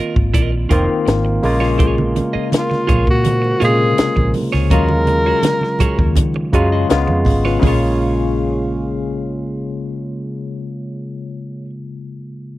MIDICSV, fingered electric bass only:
0, 0, Header, 1, 3, 480
1, 0, Start_track
1, 0, Key_signature, -5, "minor"
1, 0, Tempo, 729040
1, 1186, Time_signature, 4, 2, 24, 8
1, 8285, End_track
2, 0, Start_track
2, 0, Title_t, "Fingered electric bass"
2, 0, Program_c, 0, 33
2, 107, Note_on_c, 0, 32, 84
2, 225, Note_off_c, 0, 32, 0
2, 225, Note_on_c, 0, 34, 94
2, 425, Note_off_c, 0, 34, 0
2, 467, Note_on_c, 0, 29, 75
2, 567, Note_off_c, 0, 29, 0
2, 707, Note_on_c, 0, 32, 90
2, 906, Note_off_c, 0, 32, 0
2, 946, Note_on_c, 0, 34, 93
2, 1444, Note_off_c, 0, 34, 0
2, 1900, Note_on_c, 0, 34, 93
2, 2002, Note_off_c, 0, 34, 0
2, 2021, Note_on_c, 0, 46, 90
2, 2322, Note_off_c, 0, 46, 0
2, 2382, Note_on_c, 0, 46, 78
2, 2583, Note_off_c, 0, 46, 0
2, 2744, Note_on_c, 0, 34, 90
2, 2844, Note_off_c, 0, 34, 0
2, 2989, Note_on_c, 0, 37, 72
2, 3087, Note_off_c, 0, 37, 0
2, 3099, Note_on_c, 0, 39, 92
2, 3500, Note_off_c, 0, 39, 0
2, 3942, Note_on_c, 0, 39, 90
2, 4058, Note_on_c, 0, 51, 99
2, 4068, Note_off_c, 0, 39, 0
2, 4260, Note_off_c, 0, 51, 0
2, 4301, Note_on_c, 0, 42, 83
2, 4501, Note_off_c, 0, 42, 0
2, 4547, Note_on_c, 0, 37, 89
2, 4645, Note_off_c, 0, 37, 0
2, 4665, Note_on_c, 0, 41, 89
2, 4764, Note_off_c, 0, 41, 0
2, 4781, Note_on_c, 0, 32, 92
2, 4981, Note_off_c, 0, 32, 0
2, 5024, Note_on_c, 0, 34, 96
2, 7648, Note_off_c, 0, 34, 0
2, 8285, End_track
3, 0, Start_track
3, 0, Title_t, "Muted fingered electric bass strokes"
3, 1547, Note_on_c, 9, 29, 51
3, 1613, Note_off_c, 9, 29, 0
3, 2628, Note_on_c, 9, 29, 45
3, 2694, Note_off_c, 9, 29, 0
3, 3820, Note_on_c, 9, 29, 46
3, 3886, Note_off_c, 9, 29, 0
3, 8285, End_track
0, 0, End_of_file